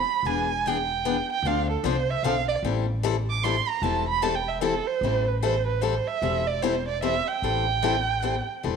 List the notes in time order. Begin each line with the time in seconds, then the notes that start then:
Already playing: B5
0.23 E1 E3 B3 D4 G#4 G#5
0.66 E3 B3 D4 G#4 G5
1.05 E3 B3 D4 G#4
1.32 G5
1.42 D2 D3 F3 C4 D4
1.47 A4 F5
1.70 A4
1.83 C2 D3 F3 C4 D4 A4 C5
2.11 E5
2.23 B1 D3 F3 C4 D4 A4 F5
2.48 D5
2.63 A1 E3 G3 C4 E4 A4
3.03 E3 G3 C4 E4 A4
3.30 D6
3.44 E3 G3 C4 E4 A4 C6
3.68 A#5
3.82 E1 E3 G3 C4 E4 A4 A5
4.08 B5
4.22 E3 G3 C4 E4 A4 A5
4.35 G5
4.48 E5
4.61 E3 G3 C4 E4 A4
4.87 C5
5.01 A1 E3 G3 C4 E4 A4
5.28 B4
5.43 E3 G3 C4 E4 A4 C5
5.66 B4
5.81 E3 G3 C4 E4 A4 C5
6.08 E5
6.22 E1 E3 G3 C4 E4 A4
6.47 D5
6.62 E3 G3 C4 E4 A4 C5
6.88 D5
7.02 E3 G3 C4 E4 A4 E5
7.28 G5
7.42 A1 E3 G3 C4 E4 A4
7.82 E3 G3 C4 E4 A4
8.22 E3 G3 C4 E4 A4
8.63 E1 E3 G3 C4 E4 A4